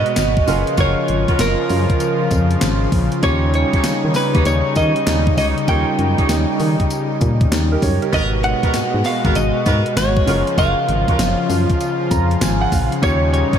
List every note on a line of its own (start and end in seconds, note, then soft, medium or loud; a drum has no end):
0.00 0.45 B2 medium
0.00 0.45 G#3 medium
0.00 0.43 B3 medium
0.00 0.43 D#4 medium
0.00 0.44 F#4 medium
0.00 0.45 F#4 medium
0.00 0.44 B4 medium
0.00 0.75 D#5 loud
0.06 closed hi-hat medium
0.16 0.42 G#1 loud
0.16 snare loud
0.16 clap loud
0.16 closed hi-hat medium
0.16 tambourine medium
0.37 kick medium
0.46 0.64 F#1 loud
0.46 8.09 C#3 medium
0.46 3.21 F3 medium
0.46 2.88 C#4 medium
0.46 2.88 F4 medium
0.46 0.65 F4 medium
0.46 3.21 F4 medium
0.46 0.65 F#4 medium
0.46 2.89 G#4 medium
0.46 0.65 A#4 medium
0.46 2.89 A#4 medium
0.46 open hi-hat medium
0.46 tambourine medium
0.67 closed hi-hat medium
0.77 0.95 F#1 loud
0.77 0.95 F4 medium
0.77 0.95 F#4 medium
0.77 0.96 A#4 loud
0.77 1.42 C#5 loud
0.77 kick loud
0.77 closed hi-hat medium
0.77 tambourine medium
1.08 1.25 G#1 medium
1.08 closed hi-hat medium
1.28 1.38 F4 medium
1.28 1.38 F#4 medium
1.28 1.38 A#4 medium
1.28 kick medium
1.28 closed hi-hat soft
1.39 1.56 F#1 loud
1.39 2.58 A#4 medium
1.39 snare loud
1.39 clap medium
1.39 closed hi-hat medium
1.39 tambourine loud
1.70 1.87 F#2 loud
1.70 open hi-hat medium
1.70 tambourine medium
1.90 kick medium
1.90 closed hi-hat medium
2.00 closed hi-hat medium
2.00 tambourine medium
2.31 2.56 F2 loud
2.31 kick medium
2.31 closed hi-hat medium
2.31 tambourine medium
2.51 closed hi-hat medium
2.61 2.87 G#1 loud
2.61 snare loud
2.61 clap loud
2.61 closed hi-hat medium
2.61 tambourine medium
2.92 3.09 A#1 medium
2.92 kick medium
2.92 open hi-hat medium
2.92 tambourine medium
3.12 closed hi-hat medium
3.22 3.65 D#2 loud
3.22 8.10 G3 medium
3.22 5.63 C#4 medium
3.22 3.40 D#4 loud
3.22 8.10 D#4 medium
3.22 5.64 F4 medium
3.22 3.40 G4 medium
3.22 5.64 G4 medium
3.22 3.41 C#5 loud
3.22 3.54 C#5 medium
3.22 5.65 C#5 medium
3.22 kick loud
3.22 closed hi-hat medium
3.22 tambourine medium
3.54 4.16 C#5 medium
3.54 closed hi-hat medium
3.73 3.83 D#4 medium
3.73 3.83 G4 medium
3.73 3.83 C#5 medium
3.73 kick loud
3.73 closed hi-hat medium
3.84 3.93 D#3 soft
3.84 snare loud
3.84 clap medium
3.84 closed hi-hat medium
3.84 tambourine loud
4.05 4.13 D#3 medium
4.14 4.46 B4 medium
4.14 snare medium
4.14 open hi-hat medium
4.14 tambourine medium
4.34 4.44 D#2 medium
4.34 4.44 D#4 medium
4.34 4.44 G4 medium
4.34 4.44 C#5 medium
4.34 kick medium
4.34 closed hi-hat medium
4.45 4.62 D#2 medium
4.45 4.77 C#5 loud
4.45 closed hi-hat medium
4.45 tambourine medium
4.75 4.93 D#3 loud
4.75 4.93 D#4 medium
4.75 4.93 G4 medium
4.75 4.94 C#5 medium
4.75 5.37 D#5 medium
4.75 kick medium
4.75 closed hi-hat medium
4.75 tambourine medium
4.96 closed hi-hat medium
5.07 5.32 D#2 medium
5.07 snare loud
5.07 clap loud
5.07 closed hi-hat medium
5.07 tambourine medium
5.27 kick loud
5.37 5.54 C#2 loud
5.37 5.55 D#4 medium
5.37 5.55 G4 medium
5.37 5.55 C#5 medium
5.37 5.46 D#5 loud
5.37 open hi-hat medium
5.37 tambourine medium
5.58 closed hi-hat medium
5.67 5.85 D#2 loud
5.67 7.78 C#4 medium
5.67 5.85 D#4 medium
5.67 7.78 F4 medium
5.67 5.86 G4 medium
5.67 7.18 G4 medium
5.67 7.19 A#4 medium
5.67 5.86 C#5 loud
5.67 6.87 G5 loud
5.67 kick loud
5.67 closed hi-hat medium
5.67 tambourine medium
5.99 6.15 F#2 medium
5.99 closed hi-hat medium
6.18 6.28 D#4 medium
6.18 6.28 G4 medium
6.18 6.28 C#5 medium
6.18 kick loud
6.18 closed hi-hat medium
6.29 6.46 D#2 loud
6.29 snare loud
6.29 clap medium
6.29 closed hi-hat medium
6.29 tambourine loud
6.60 6.76 D#3 loud
6.60 open hi-hat medium
6.60 tambourine medium
6.80 kick medium
6.80 closed hi-hat medium
6.90 closed hi-hat medium
6.90 tambourine medium
7.21 7.47 A#2 loud
7.21 kick medium
7.21 closed hi-hat medium
7.21 tambourine medium
7.41 kick loud
7.41 closed hi-hat medium
7.52 7.77 D#2 loud
7.52 snare loud
7.52 clap loud
7.52 closed hi-hat medium
7.52 tambourine loud
7.72 7.82 G4 medium
7.72 7.82 A#4 medium
7.82 7.99 F#2 loud
7.82 8.01 A#4 medium
7.82 8.01 C#5 medium
7.82 kick medium
7.82 open hi-hat medium
7.82 tambourine medium
8.02 8.31 G4 medium
8.02 8.12 A#4 medium
8.02 closed hi-hat medium
8.12 8.55 G#1 medium
8.12 10.25 B2 medium
8.12 10.25 G#3 medium
8.12 10.23 B3 medium
8.12 8.30 B3 medium
8.12 10.23 D#4 medium
8.12 8.30 F#4 medium
8.12 10.23 F#4 medium
8.12 10.25 F#4 loud
8.12 8.30 A#4 loud
8.12 10.24 A#4 medium
8.12 8.22 D#5 loud
8.12 kick loud
8.12 closed hi-hat medium
8.12 tambourine medium
8.44 9.05 F#5 loud
8.44 closed hi-hat medium
8.63 8.73 B3 medium
8.63 8.73 F#4 medium
8.63 8.73 A#4 medium
8.63 kick medium
8.63 closed hi-hat medium
8.74 8.82 G#2 soft
8.74 snare loud
8.74 clap medium
8.74 closed hi-hat medium
8.74 tambourine medium
8.94 9.03 G#2 loud
9.04 9.36 F5 loud
9.04 snare medium
9.04 open hi-hat medium
9.04 tambourine medium
9.24 9.33 G#1 medium
9.24 9.34 B3 medium
9.24 9.34 F#4 medium
9.24 9.34 A#4 medium
9.24 kick loud
9.24 closed hi-hat soft
9.35 9.52 G#1 medium
9.35 9.97 D#5 loud
9.35 closed hi-hat medium
9.35 tambourine medium
9.66 9.83 G#2 loud
9.66 9.83 B3 medium
9.66 9.83 F#4 medium
9.66 9.83 A#4 medium
9.66 kick medium
9.66 closed hi-hat medium
9.66 tambourine medium
9.86 closed hi-hat medium
9.97 10.22 G#1 loud
9.97 10.58 C#5 medium
9.97 snare loud
9.97 clap loud
9.97 closed hi-hat medium
9.97 tambourine loud
10.17 kick loud
10.26 10.44 F#1 loud
10.26 13.59 C#3 medium
10.26 13.00 F3 medium
10.26 12.67 C#4 medium
10.26 10.45 F4 medium
10.26 12.68 F4 medium
10.26 13.00 F4 medium
10.26 10.45 F#4 medium
10.26 12.68 G#4 medium
10.26 10.45 A#4 medium
10.26 12.69 A#4 medium
10.26 open hi-hat medium
10.26 tambourine medium
10.47 closed hi-hat medium
10.57 10.74 F#1 loud
10.57 10.75 F4 medium
10.57 10.75 F#4 medium
10.57 10.75 A#4 loud
10.57 12.38 F5 loud
10.57 kick loud
10.57 closed hi-hat medium
10.57 tambourine medium
10.89 11.05 G#1 medium
10.89 closed hi-hat medium
11.08 11.18 F4 medium
11.08 11.18 F#4 medium
11.08 11.18 A#4 medium
11.08 kick medium
11.08 closed hi-hat medium
11.19 11.35 F#1 medium
11.19 snare loud
11.19 clap medium
11.19 closed hi-hat medium
11.19 tambourine loud
11.50 11.66 F#2 loud
11.50 open hi-hat medium
11.50 tambourine medium
11.70 kick medium
11.70 closed hi-hat medium
11.80 closed hi-hat medium
11.80 tambourine medium
12.11 12.36 F2 medium
12.11 12.39 A#5 medium
12.11 kick medium
12.11 closed hi-hat medium
12.11 tambourine medium
12.31 closed hi-hat medium
12.41 12.67 G#1 loud
12.41 12.60 G#5 medium
12.41 snare loud
12.41 clap medium
12.41 closed hi-hat medium
12.41 tambourine loud
12.61 12.71 F#5 medium
12.72 12.89 A#1 loud
12.72 13.00 F5 medium
12.72 kick medium
12.72 open hi-hat medium
12.72 tambourine medium
12.92 closed hi-hat medium
13.01 13.44 D#2 loud
13.01 13.59 A#2 medium
13.01 13.59 G3 medium
13.01 13.59 C#4 medium
13.01 13.20 D#4 medium
13.01 13.59 D#4 loud
13.01 13.59 F4 medium
13.01 13.20 G4 medium
13.01 13.59 G4 medium
13.01 13.20 C#5 loud
13.01 13.32 C#5 loud
13.01 13.59 C#5 medium
13.01 kick loud
13.01 closed hi-hat medium
13.01 tambourine medium
13.33 13.59 C#5 medium
13.33 closed hi-hat medium
13.53 13.59 D#4 medium
13.53 13.59 G4 medium
13.53 13.59 C#5 medium
13.53 kick loud
13.53 closed hi-hat medium